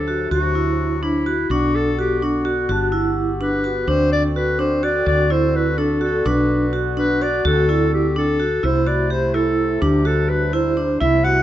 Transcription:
0.00 0.29 D2 medium
0.00 1.33 C3 medium
0.00 1.33 F#3 medium
0.00 1.33 D4 medium
0.00 0.31 A4 medium
0.08 0.26 F#4 medium
0.31 1.48 D2 medium
0.31 1.04 F#4 loud
0.31 0.50 F#4 medium
0.55 0.92 E4 medium
1.03 1.21 D4 medium
1.03 1.52 E4 medium
1.26 1.45 F#4 medium
1.50 2.67 B1 medium
1.50 2.69 D3 medium
1.50 3.86 B3 medium
1.50 1.88 D4 medium
1.50 1.77 F#4 medium
1.50 2.69 F#4 medium
1.76 1.99 A4 medium
1.99 2.17 F#4 medium
1.99 2.26 G4 medium
2.22 2.41 D4 medium
2.22 2.73 F#4 medium
2.45 2.64 F#4 medium
2.69 3.86 G1 medium
2.69 3.15 D4 medium
2.69 2.88 F#4 medium
2.69 3.87 F#4 medium
2.69 3.87 G4 medium
2.92 3.29 E4 medium
3.41 3.59 D4 medium
3.41 3.90 B4 medium
3.64 3.83 F#4 medium
3.87 5.04 D2 medium
3.87 8.47 D3 medium
3.87 6.24 C4 medium
3.87 4.25 D4 medium
3.87 8.47 F#4 medium
3.87 4.12 C5 loud
4.13 4.23 D5 loud
4.36 4.54 F#4 medium
4.36 4.59 B4 medium
4.59 4.78 D4 medium
4.59 4.86 C5 medium
4.83 5.02 F#4 medium
4.83 5.07 D5 medium
5.06 6.23 D2 medium
5.06 5.25 F#4 medium
5.06 5.33 D5 loud
5.30 5.67 E4 medium
5.30 5.57 C5 medium
5.56 5.80 B4 medium
5.78 5.97 D4 medium
5.78 6.02 A4 medium
6.01 6.20 F#4 medium
6.01 6.29 A4 medium
6.26 7.42 B1 medium
6.26 7.45 B3 medium
6.26 6.63 D4 medium
6.26 6.74 B4 medium
6.73 6.92 F#4 medium
6.97 7.16 D4 medium
6.97 7.24 B4 loud
7.22 7.40 F#4 medium
7.22 7.46 D5 loud
7.45 8.61 D2 medium
7.45 8.47 C4 medium
7.45 7.63 F#4 loud
7.45 7.90 A4 medium
7.69 8.06 E4 medium
7.94 8.15 G4 medium
8.16 8.35 D4 medium
8.16 8.67 A4 medium
8.40 8.58 F#4 medium
8.63 9.80 C2 medium
8.63 10.99 C3 medium
8.63 9.82 A3 medium
8.63 8.82 E4 medium
8.63 9.82 E4 medium
8.63 8.89 C5 medium
8.87 9.05 F#4 medium
8.87 9.11 D5 medium
9.10 9.29 G4 medium
9.10 9.37 C5 medium
9.34 9.71 E4 medium
9.34 9.83 A4 medium
9.81 10.99 D2 medium
9.81 11.00 G3 medium
9.81 10.00 D4 medium
9.81 11.00 D4 medium
9.81 10.08 G4 medium
10.05 10.42 F#4 medium
10.05 10.31 A4 medium
10.29 10.55 B4 medium
10.53 10.72 E4 medium
10.53 11.00 C5 loud
10.77 10.96 D4 medium
11.01 11.43 C2 medium
11.01 11.43 C3 medium
11.01 11.43 A3 medium
11.01 11.19 E4 medium
11.01 11.43 E4 medium
11.01 11.25 E5 loud
11.24 11.43 F#4 medium
11.24 11.43 F#5 loud

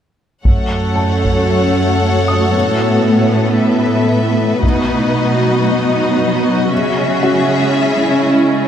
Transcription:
0.45 2.50 F#2 soft
0.45 4.59 A3 medium
0.45 2.50 A3 soft
0.45 2.50 C#4 medium
0.45 2.50 F#4 medium
0.45 4.59 A4 soft
0.45 2.50 C#5 medium
0.45 3.55 C#5 medium
0.45 3.55 F#5 soft
0.45 taiko medium
0.96 2.49 A5 soft
1.24 taiko soft
2.28 3.81 D#6 soft
2.52 4.63 A2 soft
2.52 6.71 B3 medium
2.52 4.63 B3 soft
2.52 4.62 E4 medium
2.52 4.62 E5 medium
3.59 6.72 B4 soft
3.59 4.63 E5 soft
4.62 6.67 B2 soft
4.62 6.71 F#3 medium
4.62 6.68 D#4 soft
4.62 6.71 F#4 medium
4.62 7.72 F#4 soft
4.62 6.71 D#5 medium
4.62 6.69 D#5 medium
4.62 taiko medium
6.71 8.68 C#3 soft
6.71 8.68 G#3 medium
6.71 8.68 C#4 medium
6.71 8.68 E4 medium
6.71 8.68 G#4 medium
6.71 8.68 C#5 medium
6.71 8.68 E5 medium
7.23 8.68 F#4 soft
7.23 8.68 F#5 soft
7.75 8.68 E4 medium

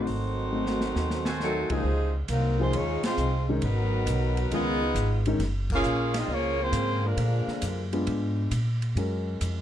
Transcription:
0.00 1.36 D#3 medium
0.00 1.36 F#3 medium
0.00 1.37 A3 medium
0.00 1.36 C4 medium
0.00 1.38 D#4 medium
0.00 1.37 F#4 medium
0.00 1.37 C5 medium
0.07 0.92 G#1 medium
0.07 open hi-hat soft
0.52 0.79 A3 medium
0.52 0.79 C4 medium
0.52 0.80 D#4 soft
0.52 0.80 F#4 medium
0.66 snare soft
0.81 snare medium
0.95 1.66 D#2 medium
0.95 snare medium
1.10 snare medium
1.25 1.82 F#4 medium
1.25 1.82 A4 medium
1.25 1.82 C5 medium
1.25 1.82 G#5 medium
1.25 snare medium
1.40 1.69 D#3 medium
1.40 1.69 F#3 medium
1.40 1.70 F#3 medium
1.40 1.69 A3 medium
1.40 1.69 C4 medium
1.40 1.69 D#4 medium
1.40 1.69 A4 loud
1.40 snare soft
1.70 1.83 C#2 medium
1.70 2.15 C3 medium
1.70 2.15 F3 medium
1.70 1.83 F3 medium
1.70 2.16 F3 medium
1.70 2.15 G#3 medium
1.70 1.83 A#3 medium
1.70 2.16 C4 medium
1.70 1.84 D#4 medium
1.70 2.15 D#4 medium
1.70 1.84 G#4 medium
1.70 2.16 G#4 medium
1.70 muted upright bass stroke soft
1.70 kick medium
1.70 ride medium
1.84 2.27 C#2 medium
2.28 2.71 C2 loud
2.28 2.58 F#3 medium
2.28 2.57 A#3 medium
2.28 2.58 C4 medium
2.28 2.58 D#4 medium
2.28 2.58 A#4 medium
2.28 hi-hat pedal medium
2.28 ride medium
2.59 2.72 F3 medium
2.59 2.72 G#3 medium
2.59 2.74 G#3 medium
2.59 2.72 A#3 medium
2.59 2.73 C4 medium
2.59 2.73 D#4 medium
2.59 2.74 D#4 medium
2.59 2.74 F4 medium
2.59 2.73 G#4 medium
2.59 2.75 C5 medium
2.72 3.01 D#2 medium
2.72 3.03 F3 medium
2.72 3.03 G#3 medium
2.72 3.04 G#3 medium
2.72 3.04 C#4 medium
2.72 3.04 D#4 loud
2.72 3.05 F4 loud
2.72 3.05 C#5 loud
2.72 ride medium
3.03 3.45 F3 medium
3.03 3.45 G#3 medium
3.03 3.46 G#3 medium
3.03 3.45 C4 medium
3.03 3.46 D#4 medium
3.03 3.46 F4 medium
3.03 3.46 C5 loud
3.03 muted upright bass stroke soft
3.03 snare medium
3.03 ride medium
3.17 3.61 C2 medium
3.17 hi-hat pedal soft
3.49 3.61 D#3 medium
3.49 3.61 G#3 medium
3.49 3.62 C#4 medium
3.49 3.62 D#4 medium
3.61 4.05 G#1 medium
3.61 4.47 D#3 medium
3.61 4.47 F#3 medium
3.61 4.48 F#3 medium
3.61 4.47 B3 medium
3.61 4.48 D#4 medium
3.61 4.48 A#4 medium
3.61 4.48 B4 medium
3.61 ride medium
4.06 4.49 B1 medium
4.06 hi-hat pedal medium
4.06 ride medium
4.37 ride soft
4.50 4.94 C#2 medium
4.50 4.79 D#3 medium
4.50 5.22 G#3 medium
4.50 4.79 G#3 medium
4.50 5.22 B3 medium
4.50 5.23 B3 loud
4.50 4.79 C#4 medium
4.50 5.22 D#4 medium
4.50 5.23 F4 loud
4.50 4.80 F4 medium
4.50 5.23 G#4 loud
4.50 5.23 D#5 loud
4.50 ride medium
4.95 5.38 G#1 loud
4.95 hi-hat pedal medium
4.95 ride medium
5.26 5.39 D#3 medium
5.26 5.39 G#3 medium
5.26 5.39 C#4 medium
5.26 5.40 D#4 medium
5.26 ride soft
5.39 5.83 F#1 medium
5.39 snare soft
5.39 ride medium
5.70 6.13 A#3 loud
5.70 6.13 C#4 medium
5.70 6.13 F4 medium
5.70 kick medium
5.70 crash medium
5.74 6.14 C#4 medium
5.74 6.14 G#4 medium
5.74 6.14 A#4 medium
5.74 6.14 F5 loud
5.83 6.27 A#1 medium
5.83 hi-hat pedal medium
6.14 6.30 D#4 medium
6.14 snare medium
6.14 ride medium
6.19 6.31 C4 medium
6.19 6.31 F4 medium
6.19 6.31 G#4 medium
6.19 6.31 D#5 loud
6.28 6.72 C#2 medium
6.28 6.59 F3 medium
6.28 6.60 A#3 medium
6.28 6.60 C#4 medium
6.32 6.61 A#3 medium
6.32 6.61 F4 medium
6.32 6.61 G#4 medium
6.32 6.61 C#5 loud
6.60 7.05 C#3 medium
6.60 7.03 F3 medium
6.60 7.05 A#3 medium
6.60 7.04 C4 medium
6.60 7.05 F4 medium
6.60 7.05 G#4 medium
6.60 7.05 C5 loud
6.72 7.16 G#2 loud
6.72 hi-hat pedal medium
6.72 ride medium
7.04 7.94 D3 medium
7.04 7.94 F3 medium
7.04 7.94 G#3 medium
7.04 7.93 A#3 medium
7.04 7.94 D4 medium
7.04 7.94 F4 medium
7.04 7.94 A#4 medium
7.17 7.46 A#2 medium
7.17 ride medium
7.47 muted upright bass stroke soft
7.47 snare soft
7.62 8.06 F#2 medium
7.62 hi-hat pedal medium
7.62 ride medium
7.93 8.49 G#3 medium
7.93 8.49 B3 medium
7.93 8.49 D4 medium
7.93 8.50 F4 medium
7.93 ride soft
8.07 8.51 G#2 medium
8.07 ride medium
8.51 8.95 A#2 medium
8.51 hi-hat pedal soft
8.51 ride medium
8.82 ride soft
8.95 9.39 F#2 medium
8.95 9.61 G#3 medium
8.95 9.61 C#4 medium
8.95 9.61 F#4 medium
8.95 9.61 A#4 medium
8.95 ride medium
9.41 9.61 F2 loud
9.41 hi-hat pedal medium
9.41 ride medium

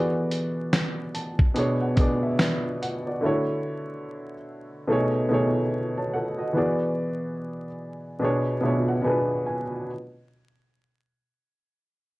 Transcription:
0.00 0.99 E3 medium
0.00 0.99 B3 medium
0.00 1.00 F#4 medium
0.00 1.04 G#4 medium
0.00 0.13 A4 medium
0.00 1.01 D5 medium
0.00 0.12 F#5 medium
0.31 closed hi-hat medium
0.73 finger snap medium
0.73 snare loud
0.73 closed hi-hat medium
1.15 1.53 A5 medium
1.15 closed hi-hat medium
1.39 kick medium
1.54 1.90 B2 medium
1.54 1.91 B3 medium
1.54 1.91 D4 medium
1.54 1.92 G#4 medium
1.54 1.79 G#5 medium
1.54 closed hi-hat medium
1.59 1.92 C#5 medium
1.81 2.20 F#5 medium
1.96 2.27 B2 medium
1.96 2.27 B3 medium
1.96 2.28 D4 medium
1.96 2.28 G#4 medium
1.96 kick medium
1.96 closed hi-hat medium
2.01 2.29 D5 medium
2.23 2.38 E5 medium
2.39 2.79 D4 soft
2.39 2.79 B4 medium
2.39 3.05 D5 medium
2.39 finger snap medium
2.39 snare loud
2.39 closed hi-hat medium
2.82 3.05 F#5 medium
2.82 closed hi-hat medium
3.07 3.23 F#4 soft
3.07 3.46 D5 medium
3.21 4.33 D3 medium
3.21 4.33 A3 medium
3.21 4.34 E4 medium
3.25 4.35 F#4 medium
3.25 4.35 C#5 medium
4.87 5.23 B2 medium
4.87 5.24 A3 medium
4.87 5.24 D#4 medium
4.87 5.25 G#4 medium
4.92 5.26 C#5 loud
5.29 5.60 B2 medium
5.29 5.60 A3 medium
5.29 5.61 D#4 medium
5.33 5.62 G#4 medium
5.33 5.62 C#5 medium
5.98 6.14 C#5 medium
5.98 6.13 A5 medium
6.14 6.38 A4 medium
6.14 6.38 F#5 medium
6.39 6.54 F#4 medium
6.39 6.78 D#5 medium
6.53 7.65 E3 medium
6.53 7.66 B3 medium
6.53 7.67 F#4 medium
6.53 7.67 G#4 medium
6.58 7.68 D5 medium
8.20 8.56 B2 medium
8.20 8.57 B3 medium
8.20 8.57 D4 medium
8.20 8.58 G#4 medium
8.24 8.58 C#5 medium
8.61 8.92 B2 medium
8.61 8.93 B3 medium
8.61 8.93 D4 medium
8.61 8.94 G#4 medium
8.61 8.87 E5 medium
8.66 8.95 C#5 medium
8.88 9.04 F#5 medium
9.02 9.60 B2 medium
9.02 9.61 B3 medium
9.02 9.61 D4 medium
9.02 9.44 G#5 medium
9.06 9.62 G#4 medium
9.06 9.63 B4 medium
9.47 9.86 G#5 medium

